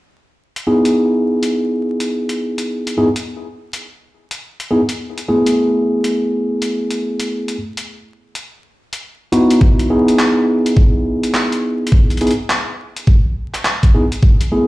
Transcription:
0.56 closed hi-hat soft
0.67 2.95 B3 medium
0.67 2.95 D#4 medium
0.67 2.95 E4 medium
0.67 2.95 G#4 medium
0.85 closed hi-hat medium
1.43 closed hi-hat medium
2.00 closed hi-hat medium
2.29 closed hi-hat soft
2.58 closed hi-hat medium
2.87 closed hi-hat soft
2.98 3.07 B3 medium
2.98 3.07 D#4 medium
2.98 3.07 E4 medium
2.98 3.07 G#4 medium
3.16 closed hi-hat medium
3.73 closed hi-hat medium
4.31 closed hi-hat medium
4.60 closed hi-hat soft
4.71 4.80 B3 medium
4.71 4.80 D#4 medium
4.71 4.80 E4 medium
4.71 4.80 G#4 medium
4.89 closed hi-hat medium
5.18 closed hi-hat soft
5.28 7.57 A3 medium
5.28 7.57 B3 medium
5.28 7.57 E4 medium
5.28 7.57 G#4 medium
5.46 closed hi-hat medium
6.04 closed hi-hat medium
6.62 closed hi-hat medium
6.90 closed hi-hat soft
7.20 closed hi-hat medium
7.48 closed hi-hat soft
7.77 closed hi-hat medium
8.35 closed hi-hat medium
8.93 closed hi-hat medium
9.32 9.87 B3 medium
9.32 9.87 D#4 medium
9.32 9.87 E4 medium
9.32 9.87 F#4 medium
9.32 closed hi-hat soft
9.51 closed hi-hat medium
9.61 kick loud
9.79 closed hi-hat soft
9.90 12.18 B3 medium
9.90 12.18 D#4 medium
9.90 12.18 E4 medium
9.90 12.18 G#4 medium
10.08 closed hi-hat medium
10.19 clap loud
10.66 closed hi-hat medium
10.77 kick loud
11.24 closed hi-hat medium
11.34 clap loud
11.52 closed hi-hat soft
11.87 closed hi-hat medium
11.92 kick loud
12.10 closed hi-hat soft
12.17 closed hi-hat soft
12.21 12.31 B3 medium
12.21 12.31 D#4 medium
12.21 12.31 E4 medium
12.21 12.31 G#4 medium
12.21 closed hi-hat soft
12.27 closed hi-hat soft
12.31 closed hi-hat soft
12.50 clap loud
12.97 closed hi-hat medium
13.07 kick medium
13.54 clap soft
13.54 closed hi-hat medium
13.65 clap loud
13.83 kick medium
13.83 closed hi-hat soft
13.94 14.04 B3 medium
13.94 14.04 D#4 medium
13.94 14.04 E4 medium
13.94 14.04 G#4 medium
14.12 closed hi-hat medium
14.23 kick loud
14.41 closed hi-hat soft
14.52 14.67 A3 medium
14.52 14.67 B3 medium
14.52 14.67 E4 medium
14.52 14.67 G#4 medium

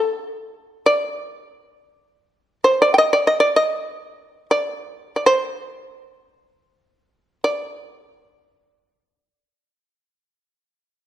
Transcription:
0.00 0.85 A4 medium
0.86 2.60 D5 medium
2.64 2.81 C5 medium
2.82 2.94 D5 medium
2.94 2.98 G5 soft
2.98 3.12 D#5 medium
3.13 3.25 D5 medium
3.27 3.39 D#5 medium
3.40 3.55 D5 medium
3.56 4.46 D#5 medium
4.51 5.14 D5 medium
5.16 5.25 D5 soft
5.26 7.40 C5 medium
7.44 11.06 D5 medium

